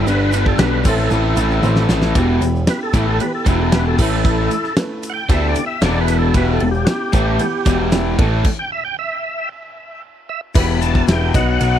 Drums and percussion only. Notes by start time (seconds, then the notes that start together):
0.07 ride, shaker
0.33 ride, shaker
0.46 kick
0.58 snare, ride, shaker
0.85 kick, crash, shaker
0.98 snare, shaker
1.11 shaker
1.37 ride, shaker
1.51 shaker
1.63 high tom, shaker
1.76 snare
1.89 snare, shaker
2.02 snare, shaker
2.15 kick, ride, shaker
2.42 ride, shaker
2.56 shaker
2.67 snare, ride, shaker
2.94 kick, ride, shaker
3.20 ride, shaker
3.46 kick, ride, shaker
3.72 snare, ride, shaker
3.99 kick, crash, shaker
4.25 kick, shaker
4.51 ride, shaker
4.64 snare, shaker
4.77 snare, ride, shaker
5.03 ride, shaker
5.29 kick, ride, shaker
5.55 ride, shaker
5.82 snare, ride, shaker
6.08 ride, shaker
6.34 kick, ride, shaker
6.60 ride
6.74 shaker
6.87 snare, ride, shaker
7.13 kick, ride, shaker
7.39 ride, shaker
7.66 kick, ride, shaker
7.92 snare, ride, shaker
8.19 kick, ride
8.44 kick, crash
10.55 kick, crash, shaker
10.81 ride, shaker
10.95 kick, shaker
11.08 snare, ride, shaker
11.34 kick, ride, shaker
11.60 ride, shaker